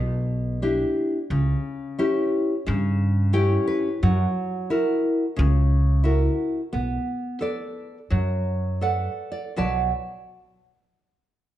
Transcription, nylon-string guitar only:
0, 0, Header, 1, 2, 480
1, 0, Start_track
1, 0, Key_signature, 2, "minor"
1, 0, Tempo, 692042
1, 907, Time_signature, 4, 2, 24, 8
1, 1380, Tempo, 678733
1, 5220, Tempo, 693642
1, 5700, Tempo, 731707
1, 6660, Tempo, 683371
1, 8067, End_track
2, 0, Start_track
2, 0, Title_t, "Nylon-string guitar"
2, 0, Program_c, 0, 24
2, 0, Note_on_c, 0, 47, 65
2, 414, Note_off_c, 0, 47, 0
2, 432, Note_on_c, 0, 62, 48
2, 436, Note_on_c, 0, 64, 41
2, 436, Note_on_c, 0, 67, 47
2, 813, Note_off_c, 0, 62, 0
2, 814, Note_off_c, 0, 64, 0
2, 815, Note_off_c, 0, 67, 0
2, 908, Note_on_c, 0, 49, 61
2, 1367, Note_off_c, 0, 49, 0
2, 1377, Note_on_c, 0, 61, 54
2, 1381, Note_on_c, 0, 64, 43
2, 1382, Note_on_c, 0, 67, 58
2, 1760, Note_off_c, 0, 61, 0
2, 1762, Note_off_c, 0, 64, 0
2, 1763, Note_off_c, 0, 67, 0
2, 1858, Note_on_c, 0, 49, 72
2, 2320, Note_off_c, 0, 49, 0
2, 2328, Note_on_c, 0, 61, 54
2, 2330, Note_on_c, 0, 64, 48
2, 2333, Note_on_c, 0, 67, 53
2, 2333, Note_on_c, 0, 79, 70
2, 2557, Note_off_c, 0, 79, 0
2, 2572, Note_on_c, 0, 71, 74
2, 2721, Note_off_c, 0, 61, 0
2, 2721, Note_off_c, 0, 64, 0
2, 2721, Note_off_c, 0, 67, 0
2, 2801, Note_off_c, 0, 71, 0
2, 2821, Note_on_c, 0, 54, 70
2, 3287, Note_off_c, 0, 54, 0
2, 3298, Note_on_c, 0, 66, 50
2, 3299, Note_on_c, 0, 64, 53
2, 3303, Note_on_c, 0, 70, 62
2, 3676, Note_off_c, 0, 64, 0
2, 3676, Note_off_c, 0, 66, 0
2, 3679, Note_off_c, 0, 70, 0
2, 3767, Note_on_c, 0, 49, 72
2, 4232, Note_off_c, 0, 49, 0
2, 4242, Note_on_c, 0, 64, 52
2, 4248, Note_on_c, 0, 66, 47
2, 4252, Note_on_c, 0, 70, 59
2, 4634, Note_off_c, 0, 64, 0
2, 4638, Note_off_c, 0, 66, 0
2, 4640, Note_off_c, 0, 70, 0
2, 4729, Note_on_c, 0, 59, 71
2, 5203, Note_off_c, 0, 59, 0
2, 5211, Note_on_c, 0, 69, 48
2, 5216, Note_on_c, 0, 71, 47
2, 5220, Note_on_c, 0, 74, 54
2, 5599, Note_off_c, 0, 69, 0
2, 5602, Note_off_c, 0, 71, 0
2, 5605, Note_off_c, 0, 74, 0
2, 5694, Note_on_c, 0, 54, 64
2, 6159, Note_on_c, 0, 69, 40
2, 6160, Note_off_c, 0, 54, 0
2, 6165, Note_on_c, 0, 71, 38
2, 6165, Note_on_c, 0, 74, 45
2, 6166, Note_on_c, 0, 78, 57
2, 6472, Note_off_c, 0, 78, 0
2, 6481, Note_off_c, 0, 74, 0
2, 6489, Note_on_c, 0, 74, 55
2, 6554, Note_off_c, 0, 69, 0
2, 6555, Note_off_c, 0, 71, 0
2, 6643, Note_off_c, 0, 74, 0
2, 6652, Note_on_c, 0, 47, 55
2, 6656, Note_on_c, 0, 54, 48
2, 6657, Note_on_c, 0, 66, 49
2, 6659, Note_on_c, 0, 71, 48
2, 6663, Note_on_c, 0, 74, 49
2, 6664, Note_on_c, 0, 81, 60
2, 6888, Note_off_c, 0, 47, 0
2, 6890, Note_off_c, 0, 54, 0
2, 6890, Note_off_c, 0, 66, 0
2, 6892, Note_off_c, 0, 71, 0
2, 6894, Note_off_c, 0, 74, 0
2, 6894, Note_off_c, 0, 81, 0
2, 8067, End_track
0, 0, End_of_file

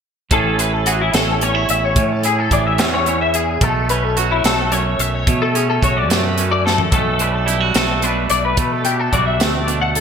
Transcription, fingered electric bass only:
0, 0, Header, 1, 2, 480
1, 0, Start_track
1, 0, Key_signature, 3, "major"
1, 0, Tempo, 550459
1, 276, Time_signature, 6, 3, 24, 8
1, 8724, End_track
2, 0, Start_track
2, 0, Title_t, "Fingered electric bass"
2, 0, Program_c, 0, 33
2, 274, Note_on_c, 0, 33, 96
2, 959, Note_off_c, 0, 33, 0
2, 994, Note_on_c, 0, 33, 93
2, 1439, Note_off_c, 0, 33, 0
2, 1477, Note_on_c, 0, 33, 81
2, 1692, Note_off_c, 0, 33, 0
2, 1707, Note_on_c, 0, 45, 86
2, 2156, Note_off_c, 0, 45, 0
2, 2191, Note_on_c, 0, 33, 84
2, 2429, Note_off_c, 0, 33, 0
2, 2429, Note_on_c, 0, 40, 85
2, 3117, Note_off_c, 0, 40, 0
2, 3150, Note_on_c, 0, 35, 96
2, 3837, Note_off_c, 0, 35, 0
2, 3874, Note_on_c, 0, 35, 92
2, 4319, Note_off_c, 0, 35, 0
2, 4350, Note_on_c, 0, 35, 77
2, 4568, Note_off_c, 0, 35, 0
2, 4598, Note_on_c, 0, 47, 94
2, 5041, Note_off_c, 0, 47, 0
2, 5078, Note_on_c, 0, 35, 81
2, 5310, Note_off_c, 0, 35, 0
2, 5310, Note_on_c, 0, 42, 82
2, 5998, Note_off_c, 0, 42, 0
2, 6034, Note_on_c, 0, 35, 97
2, 6720, Note_off_c, 0, 35, 0
2, 6760, Note_on_c, 0, 35, 97
2, 7203, Note_off_c, 0, 35, 0
2, 7241, Note_on_c, 0, 35, 76
2, 7455, Note_off_c, 0, 35, 0
2, 7481, Note_on_c, 0, 47, 86
2, 7924, Note_off_c, 0, 47, 0
2, 7962, Note_on_c, 0, 35, 82
2, 8198, Note_off_c, 0, 35, 0
2, 8198, Note_on_c, 0, 38, 80
2, 8724, Note_off_c, 0, 38, 0
2, 8724, End_track
0, 0, End_of_file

